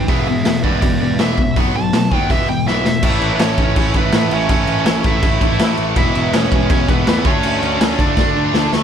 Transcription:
0.08 picked electric bass E1, overdriven electric guitar E2 B2 E3, lead electric guitar G#4 E5, kick, open hi-hat
0.27 picked electric bass E1, overdriven electric guitar E2 B2, lead electric guitar G#4 E5
0.45 picked electric bass E1, overdriven electric guitar E2 B2, lead electric guitar G#4 E5, snare, open hi-hat
0.63 picked electric bass E1, overdriven electric guitar E2 B2 E3, lead electric guitar B4 D5, kick
0.82 picked electric bass E1, overdriven electric guitar E2 B2, lead electric guitar B4 D5, kick, open hi-hat
1.00 picked electric bass E1, overdriven electric guitar E2 B2, lead electric guitar B4 D5
1.19 picked electric bass E1, overdriven electric guitar E2 B2 E3, lead electric guitar E5, snare, open hi-hat
1.38 picked electric bass C#2, overdriven electric guitar E2 B2, kick
1.56 picked electric bass B1, overdriven electric guitar B2 F#3 B3, kick, open hi-hat
1.74 picked electric bass B1, overdriven electric guitar B2 F#3, lead electric guitar A5
1.93 picked electric bass B1, overdriven electric guitar B2 F#3, snare, open hi-hat
2.10 picked electric bass D#2, overdriven electric guitar B2 F#3 B3, kick
2.16 lead electric guitar G5
2.29 picked electric bass E1, overdriven electric guitar E2 B2 E3, lead electric guitar E5, kick, open hi-hat
2.48 picked electric bass E1, overdriven electric guitar E2 B2, lead electric guitar G5
2.66 picked electric bass B1, overdriven electric guitar E2 B2 E3, lead electric guitar E5, snare
2.85 picked electric bass E1, overdriven electric guitar E2 B2, lead electric guitar E5, snare
3.03 picked electric bass A1, overdriven electric guitar A2 E3 A3, lead electric guitar E4 E5, kick, crash
3.21 picked electric bass A1, crash
3.33 lead electric guitar B4
3.39 picked electric bass A1, lead electric guitar C#4 C#5, snare, crash
3.58 picked electric bass A1, kick, crash
3.76 picked electric bass A1, lead electric guitar C#4 C#5, kick, crash
3.94 picked electric bass A1, overdriven electric guitar A2 E3 A3, lead electric guitar B3 B4, kick, crash
4.12 picked electric bass A1, overdriven electric guitar A2 E3 A3, lead electric guitar B3 B4, snare, crash
4.31 picked electric bass A1, lead electric guitar C#4 C#5, crash
4.49 picked electric bass A1, overdriven electric guitar A2 E3 A3, kick, crash
4.67 picked electric bass A1, crash
4.86 picked electric bass A1, snare, crash
5.04 picked electric bass A1, lead electric guitar E4 E5, kick, crash
5.22 picked electric bass A1, kick, crash
5.40 picked electric bass A1, overdriven electric guitar A2 E3 A3, kick, crash
5.59 picked electric bass A1, overdriven electric guitar A2 E3 A3, snare, crash
5.77 picked electric bass A1, crash
5.96 picked electric bass E1, overdriven electric guitar E2 B2 E3, lead electric guitar E4 E5, kick, crash
6.15 picked electric bass E1, crash
6.33 picked electric bass E1, lead electric guitar C#4 C#5, snare, crash
6.52 picked electric bass E1, kick, crash
6.70 picked electric bass E1, lead electric guitar C#4 C#5, kick, crash
6.87 picked electric bass E1, overdriven electric guitar E2 B2 E3, lead electric guitar B3 B4, kick, crash
7.06 overdriven electric guitar E2 B2 E3, picked electric bass E2, lead electric guitar B3 B4, snare, crash
7.24 picked electric bass D2, overdriven electric guitar D3 A3 D4, lead electric guitar C#4 C#5, kick, crash
7.43 picked electric bass D2, crash
7.62 picked electric bass D2, crash
7.80 picked electric bass D2, snare, crash
7.99 picked electric bass D2, lead electric guitar D4 D5, kick, crash
8.17 picked electric bass D2, overdriven electric guitar D3 A3 D4, kick, snare
8.35 picked electric bass D2, overdriven electric guitar D3 A3 D4
8.54 picked electric bass D2, snare
8.73 picked electric bass D2, snare

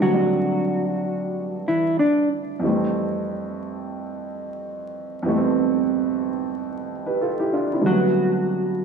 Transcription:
0.00 grand piano G2 D3 F#3, clean electric guitar F#3 F#4
0.06 grand piano A3 C4
0.14 grand piano D4
1.68 clean electric guitar E3 E4
1.99 clean electric guitar D4 D5
2.59 grand piano F2 E3 G3
2.65 grand piano A3 C4
5.22 grand piano F2 E3 G3
5.28 grand piano A3 B3
5.37 grand piano C4
7.06 grand piano G4 B4
7.21 grand piano F4 A4
7.40 grand piano E4 G4
7.53 grand piano D4 F4
7.73 grand piano C4 E4
7.81 grand piano G2 D3
7.86 clean electric guitar F#3 F#4, grand piano A3 B3

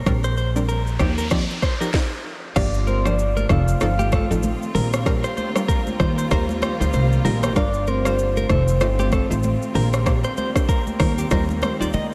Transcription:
0.06 upright bass A#1, synth pluck G3 C4 D4 A#4, kick, cross-stick, noise sweep, shaker
0.24 clean electric guitar C5, shaker
0.37 clean electric guitar C5, shaker
0.56 synth pluck G3 C4 D4 A#4, shaker
0.69 clean electric guitar A#4, shaker
0.87 shaker
0.99 upright bass D#2, synth pluck F3 C4 D#4 G4, clean electric guitar G4, kick, cross-stick, shaker
1.18 clean electric guitar A#4, shaker
1.31 synth pluck F3 C4 D#4 G4, clean electric guitar D5, kick, cross-stick, shaker
1.50 shaker
1.62 clean electric guitar C5, kick, cross-stick, shaker
1.80 synth pluck F3 C4 D#4 G4, clean electric guitar A#4, shaker
1.94 kick, snare
2.56 upright bass G1, string section D3 F3 G3 A#3 F4, synth pluck F3 A#3 D4 G4, soft synth lead D5, clean electric guitar F5, kick, cross-stick, crash, shaker
2.74 shaker
2.87 clean electric guitar A#4, soft synth lead C5, high conga, shaker
3.05 synth pluck F3 A#3 D4 G4, clean electric guitar C5, soft synth lead D5, cross-stick, shaker
3.19 shaker
3.37 clean electric guitar A#4, high conga, shaker
3.49 upright bass F1, string section D#3 F3 A3 C4, synth pluck F3 C4 D#4 A4, clean electric guitar A4, soft synth lead F5, kick, cross-stick, low conga, shaker
3.68 shaker
3.80 upright bass G1, synth pluck F3 C4 D#4 A4, cross-stick, shaker
3.99 clean electric guitar G4, high conga, shaker
4.12 clean electric guitar A4, kick, cross-stick, high conga, shaker
4.30 upright bass A1, synth pluck F3 C4 D#4 A4, shaker
4.43 high conga, shaker
4.62 shaker
4.75 upright bass A#1, string section D3 G3 A#3, synth pluck G3 C4 D4 A#4, clean electric guitar A#4, open hi-hat, low conga, shaker
4.93 cross-stick, shaker
5.06 synth pluck G3 C4 D4 A#4, kick, cross-stick, shaker
5.24 clean electric guitar C5, shaker
5.37 clean electric guitar C5, high conga, shaker
5.55 synth pluck G3 C4 D4 A#4, cross-stick, shaker
5.68 clean electric guitar A#4, kick, shaker
5.87 high conga, shaker
6.00 upright bass D#2, string section D#3, synth pluck G3 D#4 F4 C5, clean electric guitar C5, kick, cross-stick, low conga, shaker
6.18 clean electric guitar C5, shaker
6.31 upright bass D#2, synth pluck G3 D#4 F4 C5, clean electric guitar A#4, kick, cross-stick, shaker
6.49 high conga, shaker
6.62 clean electric guitar C5, cross-stick, high conga, shaker
6.80 upright bass D2, synth pluck G3 D#4 F4 C5, clean electric guitar C5, shaker
6.93 upright bass C2, clean electric guitar C5, high conga, shaker
7.12 shaker
7.25 upright bass A#1, synth pluck G3 D#4 F4 C5, clean electric guitar A#4, open hi-hat, low conga, shaker
7.43 clean electric guitar C5, cross-stick, shaker
7.56 upright bass G1, string section D3 F3, synth pluck G3 D4 F4 A#4, soft synth lead D5, clean electric guitar F5, kick, cross-stick, shaker
7.74 shaker
7.87 clean electric guitar A#4, soft synth lead C5, high conga, shaker
8.05 synth pluck G3 D4 F4 A#4, clean electric guitar C5, cross-stick, shaker
8.19 shaker
8.37 clean electric guitar A#4, high conga, shaker
8.49 upright bass F1, string section D#3 F3 A3 C4, synth pluck A3 D#4 F4 C5, clean electric guitar A4, soft synth lead C5, kick, cross-stick, low conga, shaker
8.68 shaker
8.80 upright bass G1, synth pluck A3 D#4 F4 C5, cross-stick, shaker
8.99 clean electric guitar G4, high conga, shaker
9.12 clean electric guitar A4, kick, cross-stick, high conga, shaker
9.30 upright bass A1, synth pluck A3 D#4 F4 C5, shaker
9.43 high conga, shaker
9.62 shaker
9.75 upright bass A#1, string section D3 G3 A#3, synth pluck A#3 D4 G4 C5, clean electric guitar A#4, open hi-hat, low conga, shaker
9.93 cross-stick, shaker
10.06 synth pluck A#3 D4 G4 C5, kick, cross-stick, shaker
10.24 clean electric guitar C5, shaker
10.37 clean electric guitar C5, high conga, shaker
10.55 synth pluck A#3 D4 G4 C5, kick, cross-stick, shaker
10.69 clean electric guitar A#4, kick, shaker
10.87 high conga, shaker
11.00 upright bass D#2, string section D#3 G3, synth pluck G3 D#4 F4 C5, clean electric guitar A#4, kick, cross-stick, open hi-hat, low conga, shaker
11.18 clean electric guitar G4, shaker
11.31 upright bass D#2, synth pluck G3 D#4 F4 C5, clean electric guitar A#4, kick, cross-stick, shaker
11.49 high conga, shaker
11.62 clean electric guitar C5, cross-stick, high conga, shaker
11.80 upright bass D#2, synth pluck G3 D#4 F4 C5, clean electric guitar D5, shaker
11.93 upright bass D#3, clean electric guitar D#5, high conga, shaker

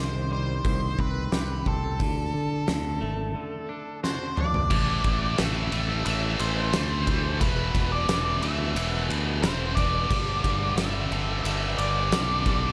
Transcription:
Already playing: fingered electric bass C2, clean electric guitar C3 D#3
0.00 lead electric guitar C5
0.31 clean electric guitar G3, lead electric guitar C5
0.65 fingered electric bass C2, clean electric guitar D#3, kick, open hi-hat
0.99 fingered electric bass C2, clean electric guitar C4, lead electric guitar B4, kick
1.32 fingered electric bass C2, clean electric guitar G4, snare, open hi-hat
1.66 fingered electric bass C2, clean electric guitar C4, lead electric guitar A4, kick
1.99 fingered electric bass D2, clean electric guitar D3, kick, open hi-hat
2.34 fingered electric bass D3
2.67 fingered electric bass D2, clean electric guitar D3, snare, open hi-hat
3.01 fingered electric bass G#1, clean electric guitar A3
3.35 clean electric guitar D3
3.69 clean electric guitar D4
4.03 clean electric guitar F#4, lead electric guitar C5, snare
4.36 clean electric guitar D4, lead electric guitar D5, mid tom
4.54 floor tom
4.70 fingered electric bass A1, distorted electric guitar A2 E3 A3, kick, crash
5.04 fingered electric bass A1, kick, ride
5.38 fingered electric bass A1, distorted electric guitar A2 E3 A3, lead electric guitar E5, snare, ride
5.72 fingered electric bass A1, distorted electric guitar A2 E3 A3, ride
6.06 fingered electric bass A1, distorted electric guitar A2 E3 A3, lead electric guitar E5, ride
6.39 fingered electric bass A1, lead electric guitar C5, ride
6.73 fingered electric bass D2, distorted electric guitar A2 E3 A3, snare, ride
7.07 distorted electric guitar A2 E3 A3, kick, ride
7.40 fingered electric bass E1, distorted electric guitar E2 B2 E3, lead electric guitar B4, kick, ride
7.74 fingered electric bass E1, kick, ride
7.92 lead electric guitar D5
8.08 fingered electric bass E1, distorted electric guitar E2 B2 E3, snare, ride
8.42 fingered electric bass D2, distorted electric guitar E2 B2 E3, lead electric guitar E5, ride
8.75 fingered electric bass E1, distorted electric guitar E2 B2 E3, ride
9.09 fingered electric bass D2, ride
9.43 fingered electric bass E1, distorted electric guitar E2 B2 E3, lead electric guitar C5, snare, ride
9.75 distorted electric guitar E2 B2 E3, lead electric guitar D5, kick, ride
10.10 fingered electric bass G1, distorted electric guitar G2 D3 G3, kick, crash
10.44 fingered electric bass G1, kick, ride
10.76 fingered electric bass G1, distorted electric guitar G2 D3 G3, lead electric guitar E5, snare, ride
11.11 fingered electric bass G1, distorted electric guitar G2 D3 G3, ride
11.44 fingered electric bass G1, distorted electric guitar G2 D3 G3, lead electric guitar E5, ride
11.78 fingered electric bass G1, lead electric guitar D5, ride
12.12 fingered electric bass B1, distorted electric guitar G2 D3 G3, snare, ride
12.46 distorted electric guitar G2 D3 G3, kick, ride

